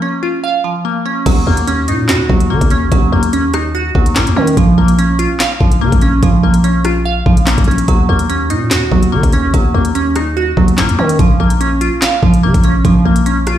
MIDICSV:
0, 0, Header, 1, 4, 480
1, 0, Start_track
1, 0, Key_signature, -6, "minor"
1, 0, Tempo, 413793
1, 1463, Time_signature, 4, 2, 24, 8
1, 15755, End_track
2, 0, Start_track
2, 0, Title_t, "Synth pluck"
2, 0, Program_c, 0, 84
2, 0, Note_on_c, 0, 53, 99
2, 0, Note_on_c, 0, 58, 81
2, 23, Note_on_c, 0, 61, 82
2, 263, Note_on_c, 0, 65, 84
2, 506, Note_on_c, 0, 77, 98
2, 731, Note_off_c, 0, 53, 0
2, 745, Note_on_c, 0, 53, 78
2, 970, Note_off_c, 0, 58, 0
2, 984, Note_on_c, 0, 58, 80
2, 1210, Note_off_c, 0, 61, 0
2, 1224, Note_on_c, 0, 61, 84
2, 1463, Note_off_c, 0, 65, 0
2, 1463, Note_on_c, 0, 54, 103
2, 1464, Note_off_c, 0, 53, 0
2, 1464, Note_off_c, 0, 58, 0
2, 1464, Note_off_c, 0, 61, 0
2, 1464, Note_off_c, 0, 77, 0
2, 1704, Note_on_c, 0, 58, 84
2, 1943, Note_on_c, 0, 61, 90
2, 2184, Note_on_c, 0, 63, 83
2, 2423, Note_on_c, 0, 66, 99
2, 2650, Note_off_c, 0, 54, 0
2, 2664, Note_on_c, 0, 54, 79
2, 2889, Note_off_c, 0, 58, 0
2, 2903, Note_on_c, 0, 58, 85
2, 3130, Note_off_c, 0, 61, 0
2, 3143, Note_on_c, 0, 61, 93
2, 3369, Note_off_c, 0, 54, 0
2, 3383, Note_off_c, 0, 63, 0
2, 3383, Note_on_c, 0, 54, 92
2, 3611, Note_off_c, 0, 58, 0
2, 3623, Note_off_c, 0, 66, 0
2, 3625, Note_on_c, 0, 58, 82
2, 3851, Note_off_c, 0, 61, 0
2, 3865, Note_on_c, 0, 61, 84
2, 4105, Note_on_c, 0, 63, 83
2, 4346, Note_on_c, 0, 66, 101
2, 4571, Note_off_c, 0, 54, 0
2, 4585, Note_on_c, 0, 54, 75
2, 4810, Note_off_c, 0, 58, 0
2, 4824, Note_on_c, 0, 58, 91
2, 5051, Note_off_c, 0, 61, 0
2, 5065, Note_on_c, 0, 61, 83
2, 5303, Note_off_c, 0, 58, 0
2, 5304, Note_off_c, 0, 54, 0
2, 5304, Note_off_c, 0, 61, 0
2, 5304, Note_off_c, 0, 63, 0
2, 5304, Note_off_c, 0, 66, 0
2, 5304, Note_on_c, 0, 53, 99
2, 5543, Note_on_c, 0, 58, 88
2, 5785, Note_on_c, 0, 61, 92
2, 6021, Note_on_c, 0, 65, 84
2, 6263, Note_on_c, 0, 77, 100
2, 6490, Note_off_c, 0, 53, 0
2, 6504, Note_on_c, 0, 53, 79
2, 6730, Note_off_c, 0, 58, 0
2, 6744, Note_on_c, 0, 58, 91
2, 6969, Note_off_c, 0, 61, 0
2, 6983, Note_on_c, 0, 61, 85
2, 7210, Note_off_c, 0, 53, 0
2, 7222, Note_off_c, 0, 65, 0
2, 7224, Note_on_c, 0, 53, 100
2, 7449, Note_off_c, 0, 58, 0
2, 7463, Note_off_c, 0, 77, 0
2, 7463, Note_on_c, 0, 58, 82
2, 7689, Note_off_c, 0, 61, 0
2, 7703, Note_on_c, 0, 61, 85
2, 7943, Note_on_c, 0, 65, 87
2, 8184, Note_on_c, 0, 77, 96
2, 8410, Note_off_c, 0, 53, 0
2, 8424, Note_on_c, 0, 53, 76
2, 8650, Note_off_c, 0, 58, 0
2, 8664, Note_on_c, 0, 58, 79
2, 8890, Note_off_c, 0, 61, 0
2, 8904, Note_on_c, 0, 61, 82
2, 9142, Note_on_c, 0, 54, 102
2, 9143, Note_off_c, 0, 53, 0
2, 9143, Note_off_c, 0, 58, 0
2, 9143, Note_off_c, 0, 61, 0
2, 9143, Note_off_c, 0, 65, 0
2, 9143, Note_off_c, 0, 77, 0
2, 9384, Note_on_c, 0, 58, 85
2, 9623, Note_on_c, 0, 61, 93
2, 9863, Note_on_c, 0, 63, 85
2, 10102, Note_on_c, 0, 66, 101
2, 10329, Note_off_c, 0, 54, 0
2, 10342, Note_on_c, 0, 54, 79
2, 10569, Note_off_c, 0, 58, 0
2, 10583, Note_on_c, 0, 58, 83
2, 10811, Note_off_c, 0, 61, 0
2, 10825, Note_on_c, 0, 61, 99
2, 11050, Note_off_c, 0, 54, 0
2, 11063, Note_off_c, 0, 63, 0
2, 11064, Note_on_c, 0, 54, 92
2, 11290, Note_off_c, 0, 58, 0
2, 11302, Note_off_c, 0, 66, 0
2, 11304, Note_on_c, 0, 58, 84
2, 11531, Note_off_c, 0, 61, 0
2, 11545, Note_on_c, 0, 61, 85
2, 11785, Note_on_c, 0, 63, 81
2, 12026, Note_on_c, 0, 66, 98
2, 12249, Note_off_c, 0, 54, 0
2, 12263, Note_on_c, 0, 54, 77
2, 12490, Note_off_c, 0, 58, 0
2, 12504, Note_on_c, 0, 58, 91
2, 12731, Note_off_c, 0, 61, 0
2, 12745, Note_on_c, 0, 61, 84
2, 12983, Note_off_c, 0, 54, 0
2, 12983, Note_off_c, 0, 58, 0
2, 12984, Note_off_c, 0, 61, 0
2, 12984, Note_off_c, 0, 63, 0
2, 12984, Note_off_c, 0, 66, 0
2, 12984, Note_on_c, 0, 53, 96
2, 13223, Note_on_c, 0, 58, 85
2, 13463, Note_on_c, 0, 61, 91
2, 13701, Note_on_c, 0, 65, 85
2, 13943, Note_on_c, 0, 77, 93
2, 14170, Note_off_c, 0, 53, 0
2, 14184, Note_on_c, 0, 53, 80
2, 14409, Note_off_c, 0, 58, 0
2, 14423, Note_on_c, 0, 58, 90
2, 14649, Note_off_c, 0, 61, 0
2, 14663, Note_on_c, 0, 61, 85
2, 14889, Note_off_c, 0, 53, 0
2, 14902, Note_off_c, 0, 65, 0
2, 14903, Note_on_c, 0, 53, 97
2, 15129, Note_off_c, 0, 58, 0
2, 15143, Note_off_c, 0, 77, 0
2, 15143, Note_on_c, 0, 58, 85
2, 15369, Note_off_c, 0, 61, 0
2, 15383, Note_on_c, 0, 61, 86
2, 15624, Note_on_c, 0, 65, 85
2, 15755, Note_off_c, 0, 53, 0
2, 15755, Note_off_c, 0, 58, 0
2, 15755, Note_off_c, 0, 61, 0
2, 15755, Note_off_c, 0, 65, 0
2, 15755, End_track
3, 0, Start_track
3, 0, Title_t, "808-style bass"
3, 0, Program_c, 1, 38
3, 1462, Note_on_c, 1, 39, 114
3, 1693, Note_off_c, 1, 39, 0
3, 1703, Note_on_c, 1, 39, 110
3, 2183, Note_on_c, 1, 46, 106
3, 2200, Note_off_c, 1, 39, 0
3, 2423, Note_on_c, 1, 39, 103
3, 2440, Note_off_c, 1, 46, 0
3, 2651, Note_off_c, 1, 39, 0
3, 2662, Note_on_c, 1, 39, 110
3, 2902, Note_on_c, 1, 51, 102
3, 2919, Note_off_c, 1, 39, 0
3, 3023, Note_off_c, 1, 51, 0
3, 3031, Note_on_c, 1, 39, 101
3, 3369, Note_off_c, 1, 39, 0
3, 3383, Note_on_c, 1, 39, 117
3, 3614, Note_off_c, 1, 39, 0
3, 3623, Note_on_c, 1, 39, 106
3, 4544, Note_off_c, 1, 39, 0
3, 4582, Note_on_c, 1, 39, 107
3, 4823, Note_on_c, 1, 46, 102
3, 4841, Note_off_c, 1, 39, 0
3, 4950, Note_on_c, 1, 39, 97
3, 4968, Note_off_c, 1, 46, 0
3, 5057, Note_off_c, 1, 39, 0
3, 5062, Note_on_c, 1, 51, 103
3, 5293, Note_off_c, 1, 51, 0
3, 5303, Note_on_c, 1, 34, 117
3, 5534, Note_off_c, 1, 34, 0
3, 5543, Note_on_c, 1, 34, 103
3, 6126, Note_off_c, 1, 34, 0
3, 6503, Note_on_c, 1, 34, 110
3, 6744, Note_on_c, 1, 49, 100
3, 6761, Note_off_c, 1, 34, 0
3, 6864, Note_off_c, 1, 49, 0
3, 6871, Note_on_c, 1, 34, 100
3, 7209, Note_off_c, 1, 34, 0
3, 7223, Note_on_c, 1, 34, 121
3, 7454, Note_off_c, 1, 34, 0
3, 7463, Note_on_c, 1, 34, 106
3, 8384, Note_off_c, 1, 34, 0
3, 8422, Note_on_c, 1, 34, 106
3, 8775, Note_off_c, 1, 34, 0
3, 8790, Note_on_c, 1, 34, 103
3, 8895, Note_off_c, 1, 34, 0
3, 8902, Note_on_c, 1, 34, 104
3, 9133, Note_off_c, 1, 34, 0
3, 9142, Note_on_c, 1, 39, 118
3, 9373, Note_off_c, 1, 39, 0
3, 9383, Note_on_c, 1, 39, 112
3, 9863, Note_on_c, 1, 46, 104
3, 9880, Note_off_c, 1, 39, 0
3, 10103, Note_on_c, 1, 39, 108
3, 10120, Note_off_c, 1, 46, 0
3, 10331, Note_off_c, 1, 39, 0
3, 10343, Note_on_c, 1, 39, 109
3, 10582, Note_on_c, 1, 51, 102
3, 10600, Note_off_c, 1, 39, 0
3, 10703, Note_off_c, 1, 51, 0
3, 10711, Note_on_c, 1, 39, 101
3, 11049, Note_off_c, 1, 39, 0
3, 11063, Note_on_c, 1, 39, 116
3, 11294, Note_off_c, 1, 39, 0
3, 11303, Note_on_c, 1, 39, 105
3, 12225, Note_off_c, 1, 39, 0
3, 12262, Note_on_c, 1, 39, 108
3, 12504, Note_on_c, 1, 46, 101
3, 12521, Note_off_c, 1, 39, 0
3, 12631, Note_on_c, 1, 39, 97
3, 12648, Note_off_c, 1, 46, 0
3, 12738, Note_off_c, 1, 39, 0
3, 12745, Note_on_c, 1, 51, 109
3, 12974, Note_off_c, 1, 51, 0
3, 12983, Note_on_c, 1, 34, 116
3, 13213, Note_off_c, 1, 34, 0
3, 13224, Note_on_c, 1, 34, 103
3, 13806, Note_off_c, 1, 34, 0
3, 14182, Note_on_c, 1, 34, 110
3, 14424, Note_on_c, 1, 49, 100
3, 14441, Note_off_c, 1, 34, 0
3, 14544, Note_off_c, 1, 49, 0
3, 14550, Note_on_c, 1, 34, 101
3, 14889, Note_off_c, 1, 34, 0
3, 14903, Note_on_c, 1, 34, 115
3, 15133, Note_off_c, 1, 34, 0
3, 15143, Note_on_c, 1, 34, 107
3, 15755, Note_off_c, 1, 34, 0
3, 15755, End_track
4, 0, Start_track
4, 0, Title_t, "Drums"
4, 1463, Note_on_c, 9, 36, 119
4, 1463, Note_on_c, 9, 42, 84
4, 1463, Note_on_c, 9, 49, 103
4, 1579, Note_off_c, 9, 36, 0
4, 1579, Note_off_c, 9, 42, 0
4, 1579, Note_off_c, 9, 49, 0
4, 1823, Note_on_c, 9, 42, 83
4, 1939, Note_off_c, 9, 42, 0
4, 1943, Note_on_c, 9, 42, 78
4, 2059, Note_off_c, 9, 42, 0
4, 2181, Note_on_c, 9, 42, 83
4, 2297, Note_off_c, 9, 42, 0
4, 2423, Note_on_c, 9, 38, 127
4, 2423, Note_on_c, 9, 39, 104
4, 2539, Note_off_c, 9, 38, 0
4, 2539, Note_off_c, 9, 39, 0
4, 2662, Note_on_c, 9, 36, 98
4, 2778, Note_off_c, 9, 36, 0
4, 2789, Note_on_c, 9, 42, 76
4, 2905, Note_off_c, 9, 42, 0
4, 3030, Note_on_c, 9, 36, 93
4, 3031, Note_on_c, 9, 42, 81
4, 3137, Note_off_c, 9, 42, 0
4, 3137, Note_on_c, 9, 42, 71
4, 3146, Note_off_c, 9, 36, 0
4, 3253, Note_off_c, 9, 42, 0
4, 3383, Note_on_c, 9, 36, 121
4, 3383, Note_on_c, 9, 42, 81
4, 3499, Note_off_c, 9, 36, 0
4, 3499, Note_off_c, 9, 42, 0
4, 3744, Note_on_c, 9, 42, 84
4, 3860, Note_off_c, 9, 42, 0
4, 3863, Note_on_c, 9, 42, 77
4, 3979, Note_off_c, 9, 42, 0
4, 4102, Note_on_c, 9, 42, 81
4, 4104, Note_on_c, 9, 37, 98
4, 4218, Note_off_c, 9, 42, 0
4, 4220, Note_off_c, 9, 37, 0
4, 4583, Note_on_c, 9, 36, 99
4, 4699, Note_off_c, 9, 36, 0
4, 4710, Note_on_c, 9, 42, 75
4, 4823, Note_on_c, 9, 38, 106
4, 4823, Note_on_c, 9, 39, 85
4, 4826, Note_off_c, 9, 42, 0
4, 4939, Note_off_c, 9, 38, 0
4, 4939, Note_off_c, 9, 39, 0
4, 4952, Note_on_c, 9, 42, 79
4, 5068, Note_off_c, 9, 42, 0
4, 5190, Note_on_c, 9, 42, 94
4, 5303, Note_on_c, 9, 36, 119
4, 5304, Note_off_c, 9, 42, 0
4, 5304, Note_on_c, 9, 42, 80
4, 5419, Note_off_c, 9, 36, 0
4, 5420, Note_off_c, 9, 42, 0
4, 5664, Note_on_c, 9, 42, 82
4, 5780, Note_off_c, 9, 42, 0
4, 5784, Note_on_c, 9, 42, 80
4, 5900, Note_off_c, 9, 42, 0
4, 6021, Note_on_c, 9, 42, 83
4, 6137, Note_off_c, 9, 42, 0
4, 6264, Note_on_c, 9, 38, 127
4, 6264, Note_on_c, 9, 39, 103
4, 6380, Note_off_c, 9, 38, 0
4, 6380, Note_off_c, 9, 39, 0
4, 6502, Note_on_c, 9, 36, 98
4, 6618, Note_off_c, 9, 36, 0
4, 6629, Note_on_c, 9, 42, 74
4, 6745, Note_off_c, 9, 42, 0
4, 6871, Note_on_c, 9, 36, 97
4, 6872, Note_on_c, 9, 42, 82
4, 6976, Note_off_c, 9, 42, 0
4, 6976, Note_on_c, 9, 42, 70
4, 6987, Note_off_c, 9, 36, 0
4, 7092, Note_off_c, 9, 42, 0
4, 7223, Note_on_c, 9, 36, 126
4, 7223, Note_on_c, 9, 42, 81
4, 7339, Note_off_c, 9, 36, 0
4, 7339, Note_off_c, 9, 42, 0
4, 7583, Note_on_c, 9, 42, 82
4, 7699, Note_off_c, 9, 42, 0
4, 7703, Note_on_c, 9, 42, 79
4, 7819, Note_off_c, 9, 42, 0
4, 7941, Note_on_c, 9, 42, 83
4, 7944, Note_on_c, 9, 37, 94
4, 8057, Note_off_c, 9, 42, 0
4, 8060, Note_off_c, 9, 37, 0
4, 8422, Note_on_c, 9, 36, 101
4, 8538, Note_off_c, 9, 36, 0
4, 8549, Note_on_c, 9, 42, 72
4, 8662, Note_on_c, 9, 38, 107
4, 8662, Note_on_c, 9, 39, 84
4, 8665, Note_off_c, 9, 42, 0
4, 8778, Note_off_c, 9, 38, 0
4, 8778, Note_off_c, 9, 39, 0
4, 8790, Note_on_c, 9, 36, 95
4, 8790, Note_on_c, 9, 42, 81
4, 8865, Note_off_c, 9, 42, 0
4, 8865, Note_on_c, 9, 42, 63
4, 8906, Note_off_c, 9, 36, 0
4, 8945, Note_off_c, 9, 42, 0
4, 8945, Note_on_c, 9, 42, 49
4, 9027, Note_off_c, 9, 42, 0
4, 9027, Note_on_c, 9, 42, 88
4, 9142, Note_off_c, 9, 42, 0
4, 9142, Note_on_c, 9, 42, 81
4, 9143, Note_on_c, 9, 36, 122
4, 9258, Note_off_c, 9, 42, 0
4, 9259, Note_off_c, 9, 36, 0
4, 9502, Note_on_c, 9, 42, 86
4, 9618, Note_off_c, 9, 42, 0
4, 9623, Note_on_c, 9, 42, 76
4, 9739, Note_off_c, 9, 42, 0
4, 9861, Note_on_c, 9, 42, 86
4, 9977, Note_off_c, 9, 42, 0
4, 10104, Note_on_c, 9, 38, 127
4, 10104, Note_on_c, 9, 39, 104
4, 10220, Note_off_c, 9, 38, 0
4, 10220, Note_off_c, 9, 39, 0
4, 10342, Note_on_c, 9, 36, 96
4, 10458, Note_off_c, 9, 36, 0
4, 10470, Note_on_c, 9, 42, 74
4, 10586, Note_off_c, 9, 42, 0
4, 10711, Note_on_c, 9, 36, 94
4, 10712, Note_on_c, 9, 42, 85
4, 10817, Note_off_c, 9, 42, 0
4, 10817, Note_on_c, 9, 42, 71
4, 10827, Note_off_c, 9, 36, 0
4, 10933, Note_off_c, 9, 42, 0
4, 11063, Note_on_c, 9, 36, 120
4, 11063, Note_on_c, 9, 42, 84
4, 11179, Note_off_c, 9, 36, 0
4, 11179, Note_off_c, 9, 42, 0
4, 11424, Note_on_c, 9, 42, 83
4, 11540, Note_off_c, 9, 42, 0
4, 11544, Note_on_c, 9, 42, 76
4, 11660, Note_off_c, 9, 42, 0
4, 11781, Note_on_c, 9, 42, 82
4, 11783, Note_on_c, 9, 37, 91
4, 11897, Note_off_c, 9, 42, 0
4, 11899, Note_off_c, 9, 37, 0
4, 12262, Note_on_c, 9, 36, 100
4, 12378, Note_off_c, 9, 36, 0
4, 12389, Note_on_c, 9, 42, 72
4, 12502, Note_on_c, 9, 38, 107
4, 12503, Note_on_c, 9, 39, 84
4, 12505, Note_off_c, 9, 42, 0
4, 12618, Note_off_c, 9, 38, 0
4, 12619, Note_off_c, 9, 39, 0
4, 12631, Note_on_c, 9, 42, 75
4, 12747, Note_off_c, 9, 42, 0
4, 12868, Note_on_c, 9, 42, 92
4, 12982, Note_off_c, 9, 42, 0
4, 12982, Note_on_c, 9, 42, 78
4, 12983, Note_on_c, 9, 36, 124
4, 13098, Note_off_c, 9, 42, 0
4, 13099, Note_off_c, 9, 36, 0
4, 13343, Note_on_c, 9, 42, 81
4, 13459, Note_off_c, 9, 42, 0
4, 13464, Note_on_c, 9, 42, 78
4, 13580, Note_off_c, 9, 42, 0
4, 13701, Note_on_c, 9, 42, 85
4, 13817, Note_off_c, 9, 42, 0
4, 13943, Note_on_c, 9, 38, 126
4, 13943, Note_on_c, 9, 39, 106
4, 14059, Note_off_c, 9, 38, 0
4, 14059, Note_off_c, 9, 39, 0
4, 14183, Note_on_c, 9, 36, 96
4, 14299, Note_off_c, 9, 36, 0
4, 14309, Note_on_c, 9, 42, 75
4, 14425, Note_off_c, 9, 42, 0
4, 14551, Note_on_c, 9, 36, 97
4, 14551, Note_on_c, 9, 42, 86
4, 14657, Note_off_c, 9, 42, 0
4, 14657, Note_on_c, 9, 42, 74
4, 14667, Note_off_c, 9, 36, 0
4, 14773, Note_off_c, 9, 42, 0
4, 14903, Note_on_c, 9, 36, 121
4, 14903, Note_on_c, 9, 42, 81
4, 15019, Note_off_c, 9, 36, 0
4, 15019, Note_off_c, 9, 42, 0
4, 15263, Note_on_c, 9, 42, 87
4, 15379, Note_off_c, 9, 42, 0
4, 15383, Note_on_c, 9, 42, 76
4, 15499, Note_off_c, 9, 42, 0
4, 15622, Note_on_c, 9, 42, 83
4, 15624, Note_on_c, 9, 37, 94
4, 15738, Note_off_c, 9, 42, 0
4, 15740, Note_off_c, 9, 37, 0
4, 15755, End_track
0, 0, End_of_file